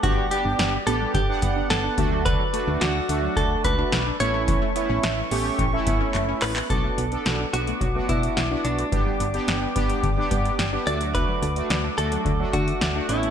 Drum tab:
HH |x-x-x-x-x-x-x-x-|x-x-x-x-x-x-x-x-|x-x-x-o-x-x-x-o-|x-xxx-xxx-xxx-xx|
CP |----------------|----------------|------------x-xx|----------------|
SD |----o-------o---|----o-------o---|----o-----------|----o-------o---|
BD |o-------o-o---o-|o-------o-o-----|o-------o-o-----|o-------o-o-----|

HH |x-xxx-xxx-xxx-xx|x-xxx-xxx-xxx-xx|
CP |----------------|----------------|
SD |----o-------o---|----o-------o---|
BD |o-----o-o-o-----|o-------o-o-----|